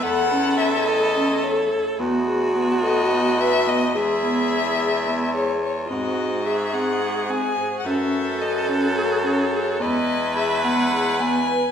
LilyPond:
<<
  \new Staff \with { instrumentName = "Violin" } { \time 7/8 \key e \major \tempo 4 = 108 fis''4 e''8 dis''4 cis''8. r16 | r4. dis''4 e''8 dis''8 | e''2~ e''8 cis''8 cis''8 | dis''4 e''8 fis''4 gis''8.~ gis''32 fis''32 |
e''4 dis''8 cis''4 cis''4 | dis''4 e''8 fis''4 gis''4 | }
  \new Staff \with { instrumentName = "Vibraphone" } { \time 7/8 \key e \major a'8 cis'4 a'8 cis'8 a'4 | b8 gis'8 b8 a'8 b8 b'8 b8 | gis'8 b4 gis'8 b8 gis'4 | bis4 gis'8 bis8 gis'8 bis8 bis'8 |
cis'4 a'8 cis'8 a'8 cis'8 gis'8 | b4 gis'8 b8 gis'8 b8 b'8 | }
  \new Staff \with { instrumentName = "Viola" } { \time 7/8 \key e \major a'2.~ a'8 | fis'2.~ fis'8 | gis'2. r16. f'32 | fis'4 gis'2~ gis'8 |
a'2.~ a'8 | b'2.~ b'8 | }
  \new Staff \with { instrumentName = "Woodwind section" } { \clef bass \time 7/8 \key e \major << { <cis e'>2.~ <cis e'>8 | <b, dis'>2.~ <b, dis'>8 | <cis e'>2.~ <cis e'>8 | <bis, fis'>2.~ <bis, fis'>8 |
<e fis'>2.~ <e fis'>8 | <cis e'>2.~ <cis e'>8 | } \\ { a2.~ a8~ | a2.~ a8 | gis2.~ gis8 | gis2.~ gis8 |
a2.~ a8 | gis2.~ gis8 | } >> }
  \new Staff \with { instrumentName = "Baritone saxophone" } { \clef bass \time 7/8 \key e \major e,2. r8 | e,2.~ e,8 | e,2.~ e,8 | gis,2. r8 |
fis,2.~ fis,8 | e,2.~ e,8 | }
>>